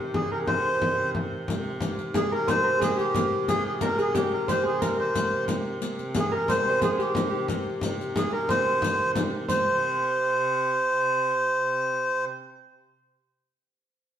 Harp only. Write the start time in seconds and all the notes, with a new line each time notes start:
Already playing: G4 A#4 C5
0.14 G#4
0.32 A#4
0.48 C5
2.14 G#4
2.32 A#4
2.47 C5
2.64 A#4
2.80 G#4
2.97 G4
3.48 G#4
3.82 A#4
3.98 G#4
4.15 G4
4.48 C5
4.63 G#4
4.81 A#4
5.00 C5
6.16 G#4
6.32 A#4
6.49 C5
6.60 C5
6.69 C5
6.82 G#4
6.98 G4
7.31 G4
8.15 G#4
8.32 A#4
8.49 C5
9.48 C5